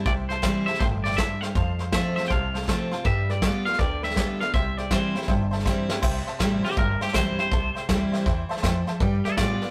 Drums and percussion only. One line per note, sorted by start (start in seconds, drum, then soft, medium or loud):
0.05 kick loud
0.05 snare soft
0.30 snare soft
0.43 kick medium
0.43 snare loud
0.43 hi-hat pedal medium
0.67 snare soft
0.74 snare soft
0.80 kick loud
0.80 snare soft
1.05 snare soft
1.11 snare soft
1.18 kick medium
1.18 snare loud
1.18 hi-hat pedal medium
1.42 snare soft
1.55 kick loud
1.55 snare soft
1.79 snare soft
1.93 kick medium
1.93 snare loud
1.93 hi-hat pedal medium
2.17 snare soft
2.25 snare soft
2.30 kick loud
2.30 snare soft
2.55 snare soft
2.62 snare soft
2.68 kick medium
2.68 snare loud
2.68 hi-hat pedal medium
2.92 snare soft
3.05 kick loud
3.05 snare soft
3.30 snare soft
3.42 kick medium
3.42 snare loud
3.42 hi-hat pedal loud
3.66 snare soft
3.73 snare soft
3.79 kick loud
3.79 snare soft
4.03 snare soft
4.10 snare soft
4.17 kick medium
4.17 snare loud
4.17 hi-hat pedal medium
4.41 snare soft
4.54 kick loud
4.54 snare soft
4.78 snare soft
4.91 kick medium
4.91 snare loud
4.91 hi-hat pedal medium
5.15 snare soft
5.22 snare soft
5.28 kick loud
5.28 snare soft
5.53 snare soft
5.59 snare soft
5.66 kick medium
5.66 snare medium
5.66 hi-hat pedal medium
5.90 snare medium
6.03 kick loud
6.03 snare soft
6.03 crash loud
6.27 snare soft
6.40 kick medium
6.40 snare loud
6.40 hi-hat pedal medium
6.65 snare soft
6.71 snare soft
6.77 kick loud
6.77 snare soft
7.01 snare soft
7.08 snare soft
7.14 kick medium
7.14 snare loud
7.14 hi-hat pedal medium
7.39 snare soft
7.51 kick loud
7.51 snare soft
7.76 snare soft
7.89 kick medium
7.89 snare loud
7.89 hi-hat pedal loud
8.13 snare soft
8.20 snare soft
8.26 kick loud
8.26 snare soft
8.51 snare soft
8.57 snare soft
8.63 kick medium
8.63 snare loud
8.63 hi-hat pedal medium
8.87 snare soft
9.00 kick loud
9.00 snare soft
9.25 snare soft
9.37 kick medium
9.37 snare loud
9.37 hi-hat pedal loud
9.61 snare soft